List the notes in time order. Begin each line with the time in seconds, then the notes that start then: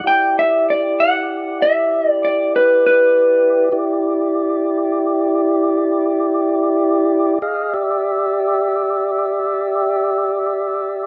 0.04 E4 G4 D5 G5
0.39 E5
0.70 D5
1.00 F#5
1.62 E5
2.09 D5
2.25 D5
2.56 B4
2.86 B4
3.72 E4 G4 D5
7.42 G#4 D#5 F5
7.74 G4 D5 E5